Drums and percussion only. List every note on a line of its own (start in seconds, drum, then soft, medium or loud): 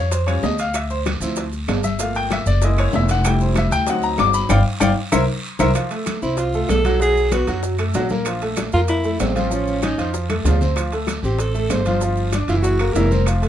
0.11 high bongo medium
0.11 high conga soft
0.11 high timbale medium
0.11 long guiro medium
0.11 maracas medium
0.27 high bongo soft
0.27 high conga soft
0.27 high timbale medium
0.27 claves medium
0.27 maracas soft
0.43 high bongo soft
0.43 low bongo medium
0.43 high conga soft
0.43 low timbale medium
0.43 short guiro medium
0.43 maracas soft
0.59 high bongo soft
0.59 high conga soft
0.59 high timbale medium
0.59 short guiro medium
0.59 maracas medium
0.74 high bongo medium
0.74 high conga soft
0.74 high timbale loud
0.74 long guiro medium
0.74 claves medium
0.74 maracas medium
0.90 high conga soft
0.90 maracas soft
1.06 high bongo medium
1.06 high conga loud
1.06 high timbale loud
1.06 low timbale medium
1.06 short guiro medium
1.06 claves medium
1.06 maracas soft
1.21 high bongo soft
1.21 high conga soft
1.21 short guiro medium
1.21 maracas medium
1.36 high bongo medium
1.36 high conga soft
1.36 high timbale medium
1.36 long guiro medium
1.36 maracas medium
1.53 high bongo soft
1.53 high conga soft
1.53 maracas soft
1.68 high bongo soft
1.68 low bongo medium
1.68 high conga medium
1.68 high timbale medium
1.68 low timbale medium
1.68 short guiro medium
1.68 claves medium
1.68 maracas soft
1.83 high bongo soft
1.83 high conga medium
1.83 short guiro medium
1.83 maracas medium
1.99 high bongo medium
1.99 high conga soft
1.99 high timbale medium
1.99 long guiro medium
1.99 maracas medium
2.15 high conga soft
2.15 high timbale medium
2.15 maracas soft
2.30 high bongo medium
2.30 high conga loud
2.30 high timbale medium
2.30 low timbale medium
2.30 short guiro medium
2.30 claves medium
2.30 maracas soft
2.46 high bongo soft
2.46 short guiro medium
2.46 maracas medium
2.62 high bongo medium
2.62 high conga soft
2.62 high timbale medium
2.62 long guiro medium
2.62 maracas medium
2.77 high bongo soft
2.77 high conga soft
2.77 high timbale loud
2.77 claves medium
2.77 maracas soft
2.93 high bongo soft
2.93 low bongo medium
2.93 high conga soft
2.93 low timbale medium
2.93 short guiro medium
2.93 maracas soft
3.09 high bongo soft
3.09 high conga soft
3.09 high timbale medium
3.09 short guiro medium
3.09 maracas medium
3.25 high bongo medium
3.25 high conga soft
3.25 high timbale loud
3.25 long guiro medium
3.25 claves medium
3.25 maracas medium
3.40 high conga soft
3.40 maracas soft
3.56 high bongo medium
3.56 high conga loud
3.56 high timbale loud
3.56 low timbale medium
3.56 short guiro medium
3.56 claves medium
3.56 maracas soft
3.71 high bongo soft
3.71 short guiro medium
3.71 maracas medium
3.87 high bongo medium
3.87 high conga soft
3.87 high timbale medium
3.87 long guiro medium
3.87 maracas medium
4.02 high bongo soft
4.02 high conga soft
4.02 maracas soft
4.18 high bongo soft
4.18 low bongo medium
4.18 high conga medium
4.18 high timbale medium
4.18 low timbale medium
4.18 short guiro medium
4.18 claves medium
4.18 maracas soft
4.34 high bongo soft
4.34 short guiro medium
4.34 maracas medium
4.49 low bongo medium
4.49 high conga loud
4.49 high timbale loud
4.49 long guiro loud
4.49 claves loud
4.49 maracas loud
4.81 low bongo loud
4.81 high conga loud
4.81 high timbale loud
4.81 long guiro loud
4.81 claves loud
4.81 maracas loud
5.12 low bongo loud
5.12 high conga loud
5.12 high timbale medium
5.12 long guiro medium
5.12 claves loud
5.12 maracas loud
5.59 low bongo loud
5.59 high conga loud
5.59 high timbale loud
5.59 long guiro loud
5.59 claves loud
5.59 maracas loud
5.75 high bongo medium
5.75 high timbale loud
5.75 long guiro medium
5.75 claves medium
5.75 maracas medium
5.91 high conga soft
5.91 high timbale medium
5.91 maracas soft
6.06 high bongo medium
6.06 high conga medium
6.06 high timbale loud
6.06 low timbale medium
6.06 short guiro medium
6.06 claves medium
6.06 maracas medium
6.22 high bongo soft
6.22 high conga soft
6.22 short guiro medium
6.22 maracas soft
6.37 high bongo medium
6.37 high conga soft
6.37 high timbale medium
6.37 long guiro medium
6.37 maracas medium
6.53 high bongo soft
6.53 high conga soft
6.53 maracas soft
6.69 high bongo soft
6.69 low bongo medium
6.69 high conga medium
6.69 high timbale medium
6.69 low timbale medium
6.69 short guiro medium
6.69 claves medium
6.69 maracas medium
6.84 high bongo soft
6.84 high conga medium
6.84 high timbale medium
6.84 short guiro medium
6.84 maracas soft
7.00 high bongo medium
7.00 high conga soft
7.00 long guiro medium
7.00 maracas medium
7.16 high conga soft
7.16 maracas soft
7.32 high bongo medium
7.32 high conga loud
7.32 high timbale medium
7.32 low timbale medium
7.32 short guiro medium
7.32 claves medium
7.32 maracas medium
7.47 high bongo soft
7.47 high conga soft
7.47 high timbale medium
7.47 short guiro medium
7.47 maracas soft
7.63 high bongo medium
7.63 high conga soft
7.63 long guiro medium
7.63 maracas medium
7.78 high bongo soft
7.78 high conga soft
7.78 high timbale medium
7.78 claves medium
7.78 maracas soft
7.94 high bongo soft
7.94 low bongo medium
7.94 high conga soft
7.94 high timbale medium
7.94 low timbale medium
7.94 short guiro medium
7.94 maracas medium
8.09 high bongo soft
8.09 high conga medium
8.09 short guiro medium
8.09 maracas soft
8.25 high bongo medium
8.25 high conga soft
8.25 high timbale medium
8.25 long guiro medium
8.25 claves medium
8.25 maracas medium
8.41 high conga soft
8.41 high timbale medium
8.41 maracas soft
8.56 high bongo medium
8.56 high conga medium
8.56 high timbale medium
8.56 low timbale medium
8.56 short guiro medium
8.56 claves medium
8.56 maracas medium
8.72 high bongo soft
8.72 high conga soft
8.72 short guiro medium
8.72 maracas soft
8.88 high bongo medium
8.88 high conga soft
8.88 high timbale medium
8.88 long guiro medium
8.88 maracas medium
9.04 high bongo soft
9.04 high conga soft
9.04 maracas soft
9.20 high bongo soft
9.20 low bongo medium
9.20 high conga medium
9.20 high timbale medium
9.20 low timbale medium
9.20 short guiro medium
9.20 claves medium
9.20 maracas medium
9.36 high bongo soft
9.36 high conga medium
9.36 high timbale medium
9.36 short guiro medium
9.36 maracas soft
9.51 high bongo medium
9.51 high conga soft
9.51 long guiro medium
9.51 maracas medium
9.67 high conga soft
9.67 maracas soft
9.82 high bongo medium
9.82 high conga loud
9.82 high timbale loud
9.82 low timbale medium
9.82 short guiro medium
9.82 claves medium
9.82 maracas medium
9.99 high bongo soft
9.99 high conga soft
9.99 high timbale medium
9.99 short guiro medium
9.99 maracas soft
10.14 high bongo medium
10.14 high conga soft
10.14 long guiro medium
10.14 maracas medium
10.29 high bongo soft
10.29 high conga loud
10.29 high timbale medium
10.29 claves medium
10.29 maracas soft
10.45 high bongo soft
10.45 low bongo medium
10.45 high timbale medium
10.45 low timbale medium
10.45 short guiro medium
10.45 maracas medium
10.51 low conga medium
10.61 high bongo soft
10.61 low conga medium
10.61 short guiro medium
10.61 maracas soft
10.76 high bongo medium
10.76 high conga soft
10.76 high timbale medium
10.76 claves medium
10.76 maracas medium
10.92 high conga soft
10.92 high timbale medium
10.92 maracas soft
11.07 high bongo medium
11.07 high conga medium
11.07 high timbale medium
11.07 low timbale medium
11.07 short guiro medium
11.07 claves medium
11.07 maracas medium
11.23 high bongo soft
11.23 high conga soft
11.23 short guiro medium
11.23 maracas soft
11.39 high bongo medium
11.39 high conga soft
11.39 high timbale medium
11.39 long guiro medium
11.39 maracas medium
11.54 high bongo soft
11.54 high conga soft
11.54 maracas soft
11.70 high bongo soft
11.70 low bongo medium
11.70 high conga medium
11.70 high timbale medium
11.70 low timbale medium
11.70 short guiro medium
11.70 claves medium
11.70 maracas medium
11.85 high bongo soft
11.85 high conga medium
11.85 high timbale medium
11.85 short guiro medium
11.85 maracas soft
12.01 high bongo medium
12.01 long guiro medium
12.01 maracas medium
12.17 high conga soft
12.17 maracas soft
12.32 high bongo medium
12.32 high conga loud
12.32 high timbale medium
12.32 low timbale medium
12.32 short guiro medium
12.32 claves medium
12.32 maracas medium
12.48 high bongo soft
12.48 high conga soft
12.48 high timbale medium
12.48 short guiro medium
12.48 maracas soft
12.64 high bongo medium
12.64 high conga soft
12.64 long guiro medium
12.64 maracas medium
12.79 high bongo soft
12.79 high conga soft
12.79 high timbale medium
12.79 claves medium
12.79 maracas soft
12.96 high bongo soft
12.96 low bongo medium
12.96 high conga soft
12.96 high timbale medium
12.96 low timbale medium
12.96 short guiro medium
12.96 maracas medium
13.11 high bongo soft
13.11 high conga medium
13.11 short guiro medium
13.11 maracas soft
13.26 high bongo medium
13.26 high timbale medium
13.26 long guiro medium
13.26 claves medium
13.26 maracas medium
13.43 high conga soft
13.43 high timbale medium
13.43 maracas soft